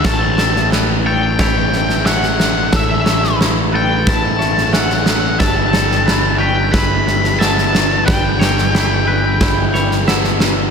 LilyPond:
<<
  \new Staff \with { instrumentName = "Lead electric guitar" } { \time 4/4 \key a \mixolydian \tempo 4 = 90 a''4 r8 g''4. fis''4 | e''4 r8 g''8 a''4 fis''4 | a''4. g''8 b''4 a''4 | g''2. r4 | }
  \new Staff \with { instrumentName = "Clean electric guitar" } { \time 4/4 \key a \mixolydian cis''8 a'8 b'8 cis''8 cis''4 e''4 | a'8 cis''4 b'4 cis''8 e''4 | e''8 a'8 b'8 cis''8 b'4 e''4 | b'8 cis''4 b'4 cis''8 e''4 | }
  \new Staff \with { instrumentName = "Clean electric guitar" } { \time 4/4 \key a \mixolydian a,8 a8 e'8 a'8 e'8 a8 cis'8 a8 | a,8 a8 e'8 a'8 e'8 a8 cis'8 a8 | g8 g8 e'8 b'8 e'8 g8 b8 g8 | g8 g8 e'8 b'8 e'8 g8 b8 g8 | }
  \new Staff \with { instrumentName = "Picked electric bass" } { \clef bass \time 4/4 \key a \mixolydian a,,1 | a,,1 | g,,1 | g,,1 | }
  \new DrumStaff \with { instrumentName = "Drums" } \drummode { \time 4/4 <bd sn>8 sn16 sn16 sn4 <bd sn>8 sn16 sn16 sn16 sn16 sn8 | <bd sn>8 sn16 sn16 sn4 <bd sn>8 sn16 sn16 sn16 sn16 sn8 | <bd sn>8 sn16 sn16 sn4 <bd sn>8 sn16 sn16 sn16 sn16 sn8 | <bd sn>8 sn16 sn16 sn4 <bd sn>8 sn16 sn16 sn16 sn16 sn8 | }
>>